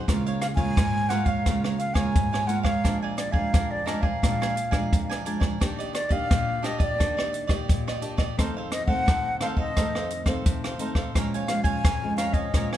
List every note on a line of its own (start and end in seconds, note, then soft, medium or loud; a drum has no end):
0.08 0.74 C#3 medium
0.08 0.54 G#3 medium
0.08 0.55 A#3 medium
0.08 0.24 F4 soft
0.08 0.55 F4 medium
0.08 0.24 A#4 medium
0.08 0.25 C#5 soft
0.08 0.25 F5 soft
0.08 kick medium
0.08 cross-stick medium
0.08 closed hi-hat medium
0.26 0.40 A#4 soft
0.26 0.41 C#5 medium
0.26 0.41 F5 medium
0.26 closed hi-hat soft
0.41 0.47 F5 medium
0.41 muted cavaquinho stroke soft
0.41 cross-stick medium
0.41 closed hi-hat soft
0.55 1.05 G#3 medium
0.55 1.05 A#3 medium
0.55 1.05 F4 medium
0.55 0.75 A#4 medium
0.55 0.75 C#5 medium
0.55 0.74 F5 medium
0.55 1.11 G#5 loud
0.55 kick medium
0.55 closed hi-hat soft
0.77 1.43 G#2 medium
0.77 1.09 F4 soft
0.77 1.09 A#4 soft
0.77 1.10 C#5 soft
0.77 1.11 F5 soft
0.77 kick medium
0.77 cross-stick medium
0.77 closed hi-hat medium
1.09 1.40 G#3 medium
1.09 1.41 A#3 medium
1.09 1.27 F4 medium
1.09 1.41 F4 medium
1.09 1.27 A#4 medium
1.09 1.26 C#5 medium
1.09 1.25 F5 medium
1.09 1.27 F#5 medium
1.09 cross-stick medium
1.09 closed hi-hat soft
1.25 1.44 A#4 soft
1.25 1.44 C#5 medium
1.25 1.62 F5 medium
1.25 1.44 F5 medium
1.25 kick medium
1.25 closed hi-hat soft
1.46 2.13 C#3 medium
1.46 1.93 G#3 medium
1.46 1.93 A#3 medium
1.46 1.62 F4 soft
1.46 1.94 F4 medium
1.46 1.62 A#4 soft
1.46 1.63 C#5 medium
1.46 1.63 F5 medium
1.46 kick medium
1.46 cross-stick medium
1.46 closed hi-hat medium
1.64 1.78 A#4 medium
1.64 1.79 C#5 medium
1.64 1.79 F5 medium
1.64 cross-stick medium
1.78 1.96 F5 medium
1.78 muted cavaquinho stroke soft
1.78 closed hi-hat soft
1.94 2.43 G#3 medium
1.94 2.43 A#3 medium
1.94 2.44 F4 medium
1.94 2.31 A#4 medium
1.94 2.30 C#5 medium
1.94 2.29 F5 medium
1.94 2.49 G#5 loud
1.94 kick medium
1.94 cross-stick medium
1.94 closed hi-hat soft
2.15 2.81 G#2 medium
2.15 kick medium
2.15 closed hi-hat medium
2.33 2.47 A#4 medium
2.33 2.47 C#5 medium
2.33 2.48 F5 medium
2.33 cross-stick medium
2.47 2.70 G#3 medium
2.47 2.70 A#3 medium
2.47 2.65 F4 soft
2.47 2.70 F4 medium
2.47 2.64 A#4 soft
2.47 2.63 C#5 soft
2.47 2.62 F5 medium
2.47 2.62 F#5 medium
2.47 closed hi-hat soft
2.63 2.82 A#4 soft
2.63 2.82 C#5 medium
2.63 2.97 F5 medium
2.63 2.81 F5 medium
2.63 kick medium
2.63 cross-stick medium
2.84 3.50 A#2 medium
2.84 3.31 F3 medium
2.84 3.31 G#3 medium
2.84 3.00 D4 medium
2.84 3.31 D4 medium
2.84 3.00 A#4 soft
2.84 3.01 D5 soft
2.84 3.01 G#5 medium
2.84 kick medium
2.84 cross-stick medium
2.84 closed hi-hat medium
3.02 3.16 A#4 medium
3.02 3.17 D5 medium
3.02 3.17 G#5 medium
3.17 3.33 D5 medium
3.17 muted cavaquinho stroke soft
3.17 cross-stick medium
3.17 closed hi-hat medium
3.31 3.82 F3 medium
3.31 3.82 G#3 medium
3.31 3.82 D4 medium
3.31 3.51 A#4 medium
3.31 3.51 D5 medium
3.31 3.72 F5 medium
3.31 3.50 G#5 medium
3.31 kick medium
3.53 4.20 F2 medium
3.53 3.85 D4 soft
3.53 3.85 A#4 soft
3.53 3.86 D5 soft
3.53 3.87 G#5 medium
3.53 kick medium
3.53 cross-stick medium
3.53 closed hi-hat medium
3.71 3.87 D5 medium
3.86 4.08 F3 medium
3.86 4.09 G#3 medium
3.86 4.03 D4 medium
3.86 4.09 D4 medium
3.86 4.03 A#4 medium
3.86 4.02 D5 medium
3.86 4.03 D#5 medium
3.86 4.01 G#5 medium
3.86 cross-stick medium
3.86 closed hi-hat soft
4.01 4.21 A#4 soft
4.01 4.20 D5 medium
4.01 5.25 F5 medium
4.01 4.20 G#5 medium
4.01 kick medium
4.22 4.89 A#2 medium
4.22 4.56 F3 medium
4.22 4.56 G#3 medium
4.22 4.39 D4 soft
4.22 4.56 D4 medium
4.22 4.39 A#4 soft
4.22 4.39 D5 medium
4.22 4.39 G#5 soft
4.22 kick medium
4.22 cross-stick medium
4.22 closed hi-hat medium
4.41 4.54 A#4 soft
4.41 4.55 D5 medium
4.41 4.55 G#5 medium
4.41 cross-stick medium
4.55 muted cavaquinho stroke soft
4.55 closed hi-hat soft
4.71 5.20 F3 medium
4.71 5.20 G#3 medium
4.71 5.20 D4 medium
4.71 5.07 A#4 medium
4.71 5.07 D5 medium
4.71 5.06 G#5 medium
4.71 kick medium
4.71 cross-stick medium
4.71 closed hi-hat soft
4.92 5.58 F2 medium
4.92 kick medium
4.92 closed hi-hat medium
5.09 5.24 A#4 soft
5.09 5.25 D5 medium
5.09 5.25 G#5 medium
5.09 cross-stick medium
5.09 closed hi-hat soft
5.25 5.56 F3 soft
5.25 5.56 G#3 medium
5.25 5.42 D4 soft
5.25 5.56 D4 medium
5.25 5.40 A#4 soft
5.25 5.39 D5 medium
5.25 5.38 G#5 medium
5.25 closed hi-hat soft
5.40 5.59 A#4 soft
5.40 5.58 D5 medium
5.40 5.58 G#5 medium
5.40 kick medium
5.40 cross-stick medium
5.60 6.27 D#3 medium
5.60 5.94 A#3 medium
5.60 5.77 D4 soft
5.60 5.94 D4 medium
5.60 5.77 G4 soft
5.60 5.95 G4 medium
5.60 5.78 D5 soft
5.60 5.77 D#5 soft
5.60 kick medium
5.60 cross-stick medium
5.60 closed hi-hat medium
5.79 5.92 G4 medium
5.79 5.93 D5 medium
5.79 5.93 D#5 medium
5.79 closed hi-hat soft
5.93 6.13 D5 medium
5.93 muted cavaquinho stroke soft
5.93 cross-stick medium
5.93 closed hi-hat soft
6.09 6.58 A#3 medium
6.09 6.59 D4 medium
6.09 6.28 G4 medium
6.09 6.59 G4 medium
6.09 6.27 D5 medium
6.09 6.28 D#5 medium
6.09 6.67 F5 medium
6.09 kick medium
6.09 closed hi-hat soft
6.30 6.96 A#2 medium
6.30 6.62 G4 soft
6.30 6.63 D5 soft
6.30 6.63 D#5 soft
6.30 kick medium
6.30 cross-stick medium
6.30 closed hi-hat medium
6.63 6.93 A#3 medium
6.63 6.80 D4 medium
6.63 6.93 D4 medium
6.63 6.79 G4 medium
6.63 6.94 G4 medium
6.63 6.77 D5 medium
6.63 6.78 D#5 medium
6.63 6.82 D#5 medium
6.63 cross-stick medium
6.63 closed hi-hat soft
6.78 6.97 G4 soft
6.78 6.96 D5 medium
6.78 6.97 D#5 medium
6.78 kick medium
6.78 closed hi-hat soft
6.83 7.48 D5 medium
6.98 7.65 D#3 medium
6.98 7.46 A#3 medium
6.98 7.15 D4 soft
6.98 7.46 D4 medium
6.98 7.15 G4 soft
6.98 7.47 G4 medium
6.98 7.16 D5 soft
6.98 7.16 D#5 medium
6.98 kick medium
6.98 cross-stick medium
6.98 closed hi-hat medium
7.17 7.32 G4 soft
7.17 7.32 D5 medium
7.17 7.32 D#5 medium
7.17 cross-stick medium
7.32 muted cavaquinho stroke soft
7.32 closed hi-hat soft
7.47 7.97 A#3 medium
7.47 7.84 G4 medium
7.47 7.97 G4 medium
7.47 7.83 D5 medium
7.47 7.83 D#5 medium
7.47 kick medium
7.47 cross-stick medium
7.47 closed hi-hat soft
7.68 8.34 A#2 medium
7.68 kick medium
7.68 closed hi-hat medium
7.87 8.01 G4 medium
7.87 8.03 D5 medium
7.87 8.02 D#5 medium
7.87 cross-stick medium
8.01 8.23 A#3 soft
8.01 8.19 D4 soft
8.01 8.23 D4 medium
8.01 8.23 G4 medium
8.01 8.18 G4 soft
8.01 8.16 D5 soft
8.01 8.17 D#5 medium
8.01 closed hi-hat soft
8.17 8.36 G4 medium
8.17 8.35 D5 medium
8.17 8.36 D#5 medium
8.17 kick medium
8.17 cross-stick medium
8.37 9.04 F2 medium
8.37 8.84 D#3 medium
8.37 8.84 A3 medium
8.37 8.85 C4 medium
8.37 8.54 D#4 soft
8.37 8.55 A4 soft
8.37 8.55 C5 medium
8.37 8.55 F5 medium
8.37 kick medium
8.37 cross-stick medium
8.37 closed hi-hat medium
8.57 8.70 A4 soft
8.57 8.71 C5 medium
8.57 8.71 F5 medium
8.72 8.86 D#5 medium
8.72 muted cavaquinho stroke soft
8.72 cross-stick medium
8.72 closed hi-hat soft
8.86 9.35 D#3 medium
8.86 9.35 A3 medium
8.86 9.35 C4 medium
8.86 9.06 A4 soft
8.86 9.05 C5 medium
8.86 9.05 F5 medium
8.86 9.37 F#5 loud
8.86 kick medium
9.06 9.73 C3 medium
9.06 9.39 D#4 soft
9.06 9.40 A4 soft
9.06 9.41 C5 soft
9.06 kick medium
9.06 cross-stick medium
9.06 closed hi-hat medium
9.40 9.70 D#3 medium
9.40 9.71 A3 medium
9.40 9.70 C4 medium
9.40 9.57 D#4 medium
9.40 9.57 A4 medium
9.40 9.57 C5 medium
9.40 9.47 F5 medium
9.40 9.56 F5 medium
9.40 cross-stick medium
9.40 closed hi-hat soft
9.57 9.75 A4 medium
9.57 9.75 C5 medium
9.57 10.24 D#5 medium
9.57 9.74 F5 medium
9.57 kick medium
9.76 10.43 F2 medium
9.76 10.23 D#3 medium
9.76 10.24 A3 medium
9.76 10.24 C4 medium
9.76 9.93 D#4 soft
9.76 9.93 A4 soft
9.76 9.93 C5 medium
9.76 9.94 F5 soft
9.76 kick medium
9.76 cross-stick medium
9.76 closed hi-hat medium
9.95 10.10 A4 soft
9.95 10.11 C5 medium
9.95 10.11 F5 medium
9.95 cross-stick medium
10.10 muted cavaquinho stroke soft
10.10 closed hi-hat soft
10.25 10.73 D#3 medium
10.25 10.74 A3 medium
10.25 10.74 C4 medium
10.25 10.61 A4 medium
10.25 10.61 C5 medium
10.25 10.60 F5 medium
10.25 kick medium
10.25 cross-stick medium
10.25 closed hi-hat soft
10.46 11.12 C3 medium
10.46 kick medium
10.46 closed hi-hat medium
10.64 10.79 A4 soft
10.64 10.80 C5 medium
10.64 10.80 F5 medium
10.64 cross-stick medium
10.64 closed hi-hat soft
10.79 11.00 D#3 soft
10.79 11.00 A3 medium
10.79 11.00 C4 medium
10.79 10.96 D#4 medium
10.79 10.96 A4 medium
10.79 10.96 C5 medium
10.79 10.94 F5 medium
10.79 closed hi-hat soft
10.95 11.14 A4 medium
10.95 11.13 C5 medium
10.95 11.13 F5 medium
10.95 kick medium
10.95 cross-stick medium
11.14 11.81 A#2 medium
11.14 11.44 F3 medium
11.14 11.44 G#3 medium
11.14 11.45 C#4 medium
11.14 11.32 A#4 medium
11.14 11.32 C#5 soft
11.14 11.32 F5 soft
11.14 kick medium
11.14 cross-stick medium
11.14 closed hi-hat medium
11.18 11.33 G#5 medium
11.34 11.49 C#5 medium
11.34 11.49 F5 medium
11.34 11.49 G#5 medium
11.34 closed hi-hat soft
11.47 11.82 F3 medium
11.47 11.82 G#3 medium
11.47 11.82 C#4 medium
11.47 11.63 F5 medium
11.47 muted cavaquinho stroke soft
11.47 cross-stick medium
11.47 closed hi-hat medium
11.64 11.83 C#5 medium
11.64 11.82 F5 medium
11.64 11.81 G#5 medium
11.64 12.14 G#5 loud
11.64 kick medium
11.64 closed hi-hat soft
11.83 12.50 F2 medium
11.83 12.17 A#4 soft
11.83 12.17 C#5 soft
11.83 12.18 F5 medium
11.83 12.19 G#5 soft
11.83 kick loud
11.83 cross-stick medium
11.83 closed hi-hat medium
12.03 12.49 F3 medium
12.03 12.49 G#3 medium
12.03 12.49 C#4 medium
12.17 12.35 A#4 medium
12.17 12.35 C#5 medium
12.17 12.35 F5 medium
12.17 12.34 F5 medium
12.17 12.33 G#5 medium
12.17 cross-stick medium
12.17 closed hi-hat soft
12.33 12.52 C#5 medium
12.33 12.69 D#5 medium
12.33 12.52 F5 medium
12.33 12.51 G#5 medium
12.33 kick medium
12.33 closed hi-hat soft
12.53 12.77 A#2 medium
12.53 12.77 F3 medium
12.53 12.77 G#3 medium
12.53 12.77 C#4 medium
12.53 12.70 A#4 medium
12.53 12.71 C#5 soft
12.53 12.71 F5 soft
12.53 12.71 G#5 medium
12.53 kick medium
12.53 cross-stick medium
12.53 closed hi-hat medium
12.73 12.77 G#5 medium
12.73 cross-stick medium